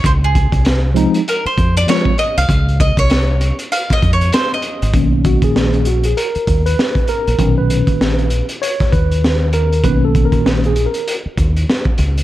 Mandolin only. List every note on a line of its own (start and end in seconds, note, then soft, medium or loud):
0.06 0.11 C5 medium
0.24 0.81 G#4 medium
1.29 1.46 A#4 medium
1.46 1.77 C5 medium
1.77 1.88 D5 loud
1.89 2.17 C#5 medium
2.19 2.36 D#5 medium
2.38 2.77 F5 loud
2.80 2.98 D#5 loud
2.99 3.56 C#5 loud
3.72 3.93 F5 medium
3.93 4.13 D#5 medium
4.13 4.32 C#5 medium
4.33 4.53 C5 medium
4.54 4.92 D#5 medium